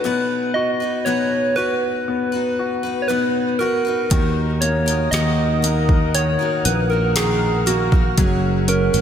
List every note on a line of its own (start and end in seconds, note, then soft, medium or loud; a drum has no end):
0.00 0.80 B2 medium
0.00 0.51 B4 loud
0.05 0.81 B3 medium
0.05 1.04 B3 medium
0.05 0.81 D#4 medium
0.05 0.81 F#4 medium
0.05 0.79 B4 medium
0.54 1.56 F#4 medium
0.54 1.06 D#5 loud
0.80 1.06 D#4 soft
0.80 1.06 F#4 soft
0.80 1.06 B4 soft
1.05 1.57 B2 medium
1.05 2.06 B3 soft
1.05 1.54 B3 medium
1.05 1.56 D#4 medium
1.05 1.57 F#4 medium
1.05 1.58 B4 medium
1.05 1.58 C#5 medium
1.56 2.32 B3 medium
1.56 2.33 D#4 soft
1.56 2.58 F#4 soft
1.56 2.33 F#4 medium
1.56 3.02 B4 loud
1.56 2.31 B4 medium
2.08 3.09 B3 medium
2.32 2.85 D#4 soft
2.32 2.84 F#4 soft
2.32 2.82 B4 medium
2.59 3.59 F#4 soft
2.83 3.09 D#4 soft
2.83 3.09 F#4 soft
2.83 3.09 B4 medium
3.02 3.09 C#5 medium
3.08 3.60 B2 medium
3.08 3.58 B3 medium
3.08 4.08 B3 medium
3.08 3.59 D#4 medium
3.08 3.60 F#4 medium
3.08 3.60 B4 medium
3.08 3.61 B4 medium
3.59 3.85 B3 medium
3.59 3.86 D#4 medium
3.59 4.10 F#4 soft
3.59 3.86 F#4 medium
3.59 4.60 A#4 medium
3.59 3.83 B4 medium
3.85 4.10 D#4 soft
3.85 4.11 F#4 soft
3.85 4.11 B4 soft
4.10 5.09 D#2 medium
4.10 4.87 D#3 medium
4.10 5.11 D#3 medium
4.10 4.87 A#3 medium
4.10 4.88 D#4 medium
4.10 4.87 F#4 medium
4.10 8.14 A#4 medium
4.10 4.85 A#4 medium
4.10 8.14 F#5 medium
4.10 6.12 D#6 medium
4.10 kick loud
4.10 closed hi-hat medium
4.61 5.63 A#3 medium
4.61 5.09 C#5 medium
4.61 closed hi-hat medium
4.86 5.12 D#4 soft
4.86 5.12 F#4 soft
4.86 5.12 A#4 soft
4.86 closed hi-hat medium
5.11 6.36 D#2 medium
5.11 5.63 D#3 medium
5.11 6.13 D#3 medium
5.11 5.61 A#3 medium
5.11 5.62 D#4 medium
5.11 5.63 F#4 medium
5.11 5.64 A#4 medium
5.11 6.16 D#5 medium
5.11 snare medium
5.11 closed hi-hat medium
5.62 6.39 A#3 medium
5.62 6.64 A#3 soft
5.62 6.40 D#4 medium
5.62 6.40 F#4 medium
5.62 6.38 A#4 medium
5.62 closed hi-hat medium
5.89 kick medium
6.15 7.15 D#3 medium
6.15 6.67 C#5 medium
6.15 8.16 F6 medium
6.15 closed hi-hat medium
6.39 6.92 D#4 soft
6.39 6.90 F#4 soft
6.39 6.88 A#4 soft
6.65 8.14 A#1 medium
6.65 7.66 A#3 soft
6.65 6.90 B4 medium
6.65 closed hi-hat medium
6.90 7.16 D#4 soft
6.90 7.16 F#4 soft
6.90 7.16 A#4 soft
6.90 7.14 A#4 medium
7.16 7.67 D#3 medium
7.16 8.15 D#3 medium
7.16 7.65 A#3 medium
7.16 7.66 D#4 medium
7.16 7.67 F#4 medium
7.16 7.68 G#4 medium
7.16 7.68 A#4 medium
7.16 snare loud
7.16 closed hi-hat medium
7.66 7.92 A#3 soft
7.66 8.17 A#3 medium
7.66 7.93 D#4 medium
7.66 8.70 F#4 medium
7.66 7.92 F#4 medium
7.66 7.91 A#4 medium
7.66 closed hi-hat medium
7.92 8.19 D#4 soft
7.92 8.18 F#4 soft
7.92 8.17 A#4 soft
7.92 kick medium
8.17 8.90 F#1 medium
8.17 8.94 F#2 medium
8.17 9.01 F#3 medium
8.17 8.94 F#3 medium
8.17 8.94 G#3 medium
8.17 8.94 C#4 medium
8.17 8.92 F#4 medium
8.17 9.01 G#4 medium
8.17 8.93 G#4 medium
8.17 9.01 F#5 medium
8.17 9.01 C#6 medium
8.17 kick loud
8.17 closed hi-hat medium
8.68 9.01 C#4 medium
8.68 9.01 A#4 medium
8.68 closed hi-hat medium
8.93 9.01 G#1 medium
8.93 9.01 G#3 soft
8.93 9.01 C#4 soft
8.93 9.01 F#4 soft
8.93 9.01 G#4 soft
8.93 closed hi-hat medium